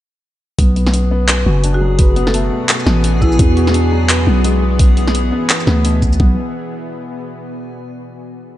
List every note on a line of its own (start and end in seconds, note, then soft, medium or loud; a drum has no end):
0.59 1.45 B1 loud
0.59 3.39 B2 medium
0.59 0.75 B3 medium
0.59 6.21 G#4 medium
0.59 kick loud
0.59 closed hi-hat medium
0.76 6.20 B3 medium
0.76 0.92 B3 medium
0.76 closed hi-hat soft
0.82 4.18 F#4 medium
0.87 snare medium
0.94 1.10 B3 medium
0.94 closed hi-hat medium
1.11 1.27 B3 loud
1.28 1.45 B3 medium
1.28 clap loud
1.28 closed hi-hat medium
1.46 2.51 F#1 medium
1.46 1.63 F#4 medium
1.64 1.80 D4 medium
1.64 closed hi-hat medium
1.68 4.53 D5 medium
1.74 1.95 F#4 medium
1.81 1.98 F#3 medium
1.99 2.10 B4 medium
1.99 kick loud
1.99 closed hi-hat medium
2.16 2.28 B3 loud
2.16 closed hi-hat soft
2.27 2.52 A4 medium
2.27 snare medium
2.34 2.50 A3 loud
2.34 closed hi-hat medium
2.51 2.68 B3 medium
2.69 2.85 B3 medium
2.69 clap loud
2.69 closed hi-hat medium
2.80 shaker soft
2.87 3.38 A1 medium
2.87 3.03 B3 medium
2.87 snare medium
3.04 3.20 B3 medium
3.04 closed hi-hat medium
3.21 3.38 B3 loud
3.21 3.43 E4 medium
3.21 kick medium
3.21 shaker soft
3.32 shaker soft
3.39 4.26 E2 loud
3.39 6.20 E3 medium
3.39 3.55 B3 medium
3.39 kick loud
3.39 closed hi-hat medium
3.57 3.74 F#4 medium
3.57 closed hi-hat soft
3.67 snare soft
3.74 3.90 D4 medium
3.74 closed hi-hat medium
3.92 4.09 F#3 medium
4.02 6.20 G#4 medium
4.09 4.21 B4 medium
4.09 clap loud
4.09 closed hi-hat medium
4.21 6.20 E5 medium
4.27 5.31 B1 loud
4.27 4.38 B3 loud
4.44 4.61 G#3 loud
4.44 closed hi-hat medium
4.62 4.78 B3 medium
4.79 4.95 B3 medium
4.79 kick loud
4.79 closed hi-hat medium
4.97 5.13 B3 medium
4.97 closed hi-hat soft
5.08 snare soft
5.15 5.30 B3 medium
5.15 closed hi-hat medium
5.32 5.48 B3 loud
5.50 5.66 B3 medium
5.50 clap loud
5.50 closed hi-hat medium
5.60 shaker soft
5.67 6.19 D2 medium
5.67 5.79 B3 loud
5.67 snare medium
5.85 6.01 B2 medium
5.85 closed hi-hat medium
6.02 6.18 B3 medium
6.02 kick medium
6.02 shaker soft
6.13 shaker soft
6.20 6.36 B1 loud
6.20 7.56 B2 medium
6.20 6.36 B3 medium
6.20 kick loud
6.26 7.56 B3 medium
6.32 7.56 F#4 medium
6.36 7.56 D5 medium